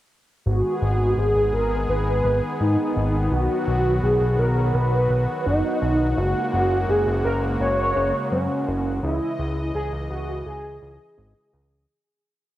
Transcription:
0.46 0.62 G#1 medium
0.46 6.14 D#3 medium
0.46 3.29 G#3 medium
0.46 6.14 B3 medium
0.46 1.19 F#4 loud
0.46 3.29 G#4 medium
0.82 1.14 G#1 medium
1.17 1.34 G#1 medium
1.17 1.53 G#4 medium
1.35 1.52 G#1 medium
1.53 1.86 G#1 medium
1.53 1.86 A#4 medium
1.89 2.22 G#1 medium
1.89 2.56 B4 loud
2.25 2.41 G#1 medium
2.60 2.77 G#2 medium
2.60 3.28 D#4 medium
2.96 3.29 G#1 medium
3.32 3.48 B1 loud
3.32 6.15 F#3 medium
3.32 4.05 F#4 loud
3.32 8.99 F#4 medium
3.67 4.00 B1 loud
4.03 4.20 B1 medium
4.03 4.38 G#4 loud
4.21 4.37 B1 medium
4.39 4.72 B1 medium
4.39 4.76 A#4 loud
4.75 5.07 B1 medium
4.75 5.45 B4 loud
5.10 5.27 B1 medium
5.46 5.62 F#1 medium
5.46 6.19 D#4 loud
5.82 6.14 B1 medium
6.17 6.34 F#1 loud
6.17 11.85 C#3 medium
6.17 11.85 G#3 medium
6.17 9.00 A#3 medium
6.17 6.90 F#4 loud
6.53 6.86 F#1 loud
6.89 7.05 F#1 medium
6.89 7.24 G#4 loud
7.07 7.23 F#1 medium
7.25 7.57 F#1 medium
7.25 7.39 A#4 loud
7.60 7.93 F#1 medium
7.60 8.28 C#5 loud
7.96 8.12 F#1 medium
8.32 8.48 F#2 medium
8.32 8.99 C#4 loud
8.68 9.00 F#1 medium
9.03 9.20 C#2 loud
9.03 11.86 E3 medium
9.03 9.71 E4 loud
9.03 11.86 D#5 medium
9.39 9.72 C#2 loud
9.75 9.91 C#2 medium
9.75 9.89 G#4 loud
9.93 10.09 C#2 medium
10.10 10.43 C#2 medium
10.10 10.43 F#4 loud
10.46 10.79 C#2 medium
10.46 11.49 G#4 loud
10.82 10.98 C#2 medium
11.18 11.34 G#1 medium
11.53 11.86 C#2 medium

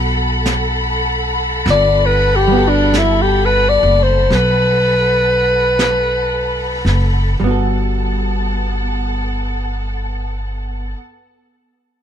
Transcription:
0.00 1.62 B1 medium
0.00 1.67 G3 medium
0.00 1.66 B3 soft
0.00 1.67 F#4 soft
0.00 1.67 A4 soft
0.00 7.39 A4 medium
0.00 7.37 F#5 medium
0.00 7.39 A5 medium
0.00 7.40 B5 medium
0.46 brush sweep soft
0.46 snare medium
0.46 hi-hat pedal medium
1.66 3.80 G1 medium
1.66 brush sweep soft
1.66 snare soft
1.70 2.07 D5 loud
2.06 2.37 B4 medium
2.36 2.70 G4 medium
2.48 7.39 G3 soft
2.52 7.42 B3 medium
2.52 7.44 F#4 medium
2.59 7.46 A4 medium
2.69 2.99 D4 medium
2.94 brush sweep soft
2.94 snare soft
2.94 hi-hat pedal medium
2.98 3.24 E4 medium
3.22 3.47 G4 medium
3.46 3.70 B4 medium
3.69 4.04 D5 loud
3.83 4.27 F#1 medium
4.03 4.36 C5 medium
4.30 6.82 B1 medium
4.30 brush sweep soft
4.30 snare soft
4.35 7.16 B4 medium
5.79 brush sweep soft
5.79 snare medium
5.79 hi-hat pedal medium
6.85 7.37 F#1 medium
6.85 snare soft
7.40 10.92 G1 medium
7.40 10.95 G3 soft
7.40 10.92 B3 medium
7.40 10.92 A4 medium
7.40 10.92 F#5 medium
7.40 10.93 A5 medium
7.44 11.00 B3 soft
7.44 11.03 F#4 soft
7.51 11.07 A4 soft

